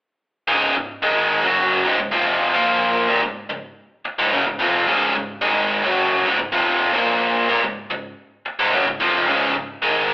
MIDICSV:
0, 0, Header, 1, 3, 480
1, 0, Start_track
1, 0, Key_signature, -5, "major"
1, 0, Tempo, 549451
1, 421, Time_signature, 4, 2, 24, 8
1, 8857, End_track
2, 0, Start_track
2, 0, Title_t, "Overdriven electric guitar"
2, 0, Program_c, 0, 29
2, 414, Note_on_c, 0, 37, 98
2, 419, Note_on_c, 0, 44, 93
2, 424, Note_on_c, 0, 49, 101
2, 643, Note_off_c, 0, 37, 0
2, 648, Note_off_c, 0, 44, 0
2, 653, Note_on_c, 0, 37, 69
2, 656, Note_off_c, 0, 49, 0
2, 659, Note_on_c, 0, 44, 70
2, 849, Note_off_c, 0, 37, 0
2, 852, Note_off_c, 0, 44, 0
2, 897, Note_on_c, 0, 44, 91
2, 903, Note_on_c, 0, 51, 90
2, 908, Note_on_c, 0, 56, 108
2, 1249, Note_off_c, 0, 44, 0
2, 1253, Note_on_c, 0, 42, 87
2, 1255, Note_off_c, 0, 51, 0
2, 1257, Note_off_c, 0, 56, 0
2, 1262, Note_on_c, 0, 49, 79
2, 1266, Note_on_c, 0, 54, 99
2, 1610, Note_off_c, 0, 42, 0
2, 1614, Note_off_c, 0, 49, 0
2, 1616, Note_off_c, 0, 54, 0
2, 1616, Note_on_c, 0, 37, 79
2, 1621, Note_on_c, 0, 44, 107
2, 1727, Note_off_c, 0, 37, 0
2, 1734, Note_off_c, 0, 44, 0
2, 1738, Note_on_c, 0, 37, 61
2, 1745, Note_on_c, 0, 44, 67
2, 1846, Note_off_c, 0, 37, 0
2, 1850, Note_off_c, 0, 44, 0
2, 1850, Note_on_c, 0, 41, 96
2, 1854, Note_on_c, 0, 48, 90
2, 1858, Note_on_c, 0, 53, 98
2, 2208, Note_off_c, 0, 41, 0
2, 2209, Note_off_c, 0, 53, 0
2, 2210, Note_off_c, 0, 48, 0
2, 2215, Note_on_c, 0, 46, 73
2, 2220, Note_on_c, 0, 53, 82
2, 2224, Note_on_c, 0, 58, 86
2, 2690, Note_off_c, 0, 46, 0
2, 2693, Note_off_c, 0, 53, 0
2, 2695, Note_off_c, 0, 58, 0
2, 2698, Note_on_c, 0, 39, 85
2, 2703, Note_on_c, 0, 46, 91
2, 2812, Note_off_c, 0, 39, 0
2, 2814, Note_off_c, 0, 46, 0
2, 2819, Note_on_c, 0, 37, 65
2, 2820, Note_on_c, 0, 44, 74
2, 3011, Note_off_c, 0, 37, 0
2, 3012, Note_off_c, 0, 44, 0
2, 3057, Note_on_c, 0, 37, 59
2, 3057, Note_on_c, 0, 44, 58
2, 3250, Note_off_c, 0, 37, 0
2, 3250, Note_off_c, 0, 44, 0
2, 3655, Note_on_c, 0, 37, 82
2, 3659, Note_on_c, 0, 44, 103
2, 3769, Note_off_c, 0, 37, 0
2, 3772, Note_off_c, 0, 44, 0
2, 3773, Note_on_c, 0, 42, 88
2, 3775, Note_on_c, 0, 49, 112
2, 3889, Note_off_c, 0, 42, 0
2, 3890, Note_off_c, 0, 49, 0
2, 3894, Note_on_c, 0, 37, 58
2, 3895, Note_on_c, 0, 44, 67
2, 4006, Note_off_c, 0, 37, 0
2, 4009, Note_on_c, 0, 41, 91
2, 4010, Note_off_c, 0, 44, 0
2, 4013, Note_on_c, 0, 48, 100
2, 4019, Note_on_c, 0, 53, 90
2, 4247, Note_off_c, 0, 41, 0
2, 4249, Note_off_c, 0, 48, 0
2, 4251, Note_off_c, 0, 53, 0
2, 4252, Note_on_c, 0, 37, 87
2, 4257, Note_on_c, 0, 44, 113
2, 4263, Note_on_c, 0, 49, 108
2, 4488, Note_off_c, 0, 37, 0
2, 4490, Note_off_c, 0, 44, 0
2, 4493, Note_off_c, 0, 49, 0
2, 4501, Note_on_c, 0, 37, 67
2, 4506, Note_on_c, 0, 44, 71
2, 4692, Note_off_c, 0, 37, 0
2, 4694, Note_off_c, 0, 44, 0
2, 4727, Note_on_c, 0, 44, 90
2, 4735, Note_on_c, 0, 51, 96
2, 4735, Note_on_c, 0, 56, 98
2, 5085, Note_off_c, 0, 44, 0
2, 5089, Note_off_c, 0, 51, 0
2, 5089, Note_off_c, 0, 56, 0
2, 5096, Note_on_c, 0, 42, 86
2, 5101, Note_on_c, 0, 49, 92
2, 5104, Note_on_c, 0, 54, 90
2, 5449, Note_off_c, 0, 42, 0
2, 5452, Note_off_c, 0, 49, 0
2, 5454, Note_off_c, 0, 54, 0
2, 5460, Note_on_c, 0, 37, 81
2, 5463, Note_on_c, 0, 44, 98
2, 5570, Note_off_c, 0, 37, 0
2, 5573, Note_off_c, 0, 44, 0
2, 5580, Note_on_c, 0, 37, 58
2, 5584, Note_on_c, 0, 44, 72
2, 5694, Note_off_c, 0, 37, 0
2, 5698, Note_off_c, 0, 44, 0
2, 5698, Note_on_c, 0, 41, 88
2, 5702, Note_on_c, 0, 48, 99
2, 5709, Note_on_c, 0, 53, 103
2, 6049, Note_off_c, 0, 53, 0
2, 6050, Note_off_c, 0, 41, 0
2, 6052, Note_off_c, 0, 48, 0
2, 6054, Note_on_c, 0, 46, 88
2, 6059, Note_on_c, 0, 53, 94
2, 6060, Note_on_c, 0, 58, 87
2, 6528, Note_off_c, 0, 46, 0
2, 6531, Note_off_c, 0, 53, 0
2, 6531, Note_off_c, 0, 58, 0
2, 6540, Note_on_c, 0, 39, 76
2, 6545, Note_on_c, 0, 46, 93
2, 6651, Note_off_c, 0, 39, 0
2, 6654, Note_off_c, 0, 46, 0
2, 6666, Note_on_c, 0, 37, 66
2, 6670, Note_on_c, 0, 44, 75
2, 6854, Note_off_c, 0, 37, 0
2, 6855, Note_off_c, 0, 44, 0
2, 6903, Note_on_c, 0, 37, 59
2, 6909, Note_on_c, 0, 44, 66
2, 7092, Note_off_c, 0, 37, 0
2, 7095, Note_off_c, 0, 44, 0
2, 7504, Note_on_c, 0, 37, 87
2, 7507, Note_on_c, 0, 44, 100
2, 7614, Note_off_c, 0, 37, 0
2, 7615, Note_off_c, 0, 44, 0
2, 7624, Note_on_c, 0, 42, 99
2, 7631, Note_on_c, 0, 49, 95
2, 7733, Note_off_c, 0, 42, 0
2, 7737, Note_off_c, 0, 49, 0
2, 7745, Note_on_c, 0, 37, 57
2, 7751, Note_on_c, 0, 44, 65
2, 7858, Note_off_c, 0, 37, 0
2, 7862, Note_on_c, 0, 41, 84
2, 7864, Note_off_c, 0, 44, 0
2, 7870, Note_on_c, 0, 48, 82
2, 7874, Note_on_c, 0, 53, 103
2, 8089, Note_off_c, 0, 41, 0
2, 8093, Note_on_c, 0, 37, 88
2, 8097, Note_off_c, 0, 48, 0
2, 8099, Note_off_c, 0, 53, 0
2, 8102, Note_on_c, 0, 44, 90
2, 8105, Note_on_c, 0, 49, 112
2, 8328, Note_off_c, 0, 37, 0
2, 8330, Note_off_c, 0, 44, 0
2, 8334, Note_off_c, 0, 49, 0
2, 8340, Note_on_c, 0, 37, 67
2, 8341, Note_on_c, 0, 44, 77
2, 8531, Note_off_c, 0, 37, 0
2, 8531, Note_off_c, 0, 44, 0
2, 8580, Note_on_c, 0, 44, 88
2, 8584, Note_on_c, 0, 51, 95
2, 8585, Note_on_c, 0, 56, 105
2, 8857, Note_off_c, 0, 44, 0
2, 8857, Note_off_c, 0, 51, 0
2, 8857, Note_off_c, 0, 56, 0
2, 8857, End_track
3, 0, Start_track
3, 0, Title_t, "Muted overdriven electric guitar strokes"
3, 3539, Note_on_c, 9, 29, 57
3, 3626, Note_off_c, 9, 29, 0
3, 7388, Note_on_c, 9, 29, 55
3, 7476, Note_off_c, 9, 29, 0
3, 8857, End_track
0, 0, End_of_file